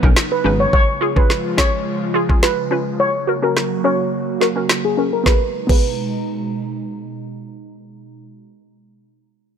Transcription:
Already playing: C#3 F#3 B3 D#4
0.03 B1 C#4 D#4 A#4, kick
0.17 snare
0.32 B4
0.44 G#1 C#4 D#4 B4
0.60 C#5
0.73 F3 G#3 F4 C#5, kick
1.01 F4 G#4
1.16 C#4 F4 G#4 B4, kick
1.30 snare
1.57 C#4 F4 G#4 C#5, kick, snare
2.14 F4 G#4
2.29 C#4 F4 G#4, kick
2.43 B4, snare
2.71 C#4 F4 B4
2.99 F#3 A#3 F#4 C#5
3.27 F#4 A#4
3.42 C#4 F#4 A#4
3.57 cross-stick, snare
3.84 C#4 F#4 A#4 C#5
4.41 F#4 A#4, snare
4.56 C#4 F#4 A#4
4.69 cross-stick, snare
4.85 G#4
4.97 C#4 F#4 A#4
5.13 A#4
5.24 B2 G#3 B3 D#4 G#4 B4 A#5, kick, snare
5.29 A#4
5.67 B3 G#4 B4, kick, crash
5.72 B4

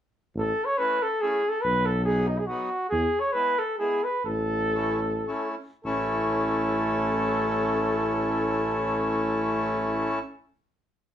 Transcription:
0.35 A1 A4
0.65 C#5
0.78 A3 C#4 E4 B4
1.02 A4
1.21 A3 C#4 E4 G#4
1.49 A4
1.62 B1 B4
1.86 A4
2.05 F#3 B3 D#4 G#4
2.28 D#4
2.39 G#4
2.46 F#3 B3 D#4 F#4
2.90 E2 G#4
3.20 C#5
3.33 G#3 B3 E4 B4
3.59 A4
3.79 G#3 B3 E4 G#4
4.04 B4
4.25 A1 A4
4.75 A3 C#4 E4
5.28 A3 C#4 E4
5.85 A1 A3 C#4 E4 A4

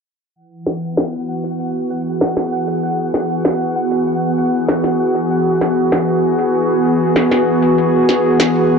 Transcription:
0.35 E3 F#5
0.67 B3, snare
0.94 F#4, snare
1.81 G#4
2.21 snare
2.37 snare
3.14 snare
3.45 snare
4.68 snare
4.84 snare
5.61 snare
5.92 snare
7.16 snare
7.31 snare
8.09 snare
8.40 snare

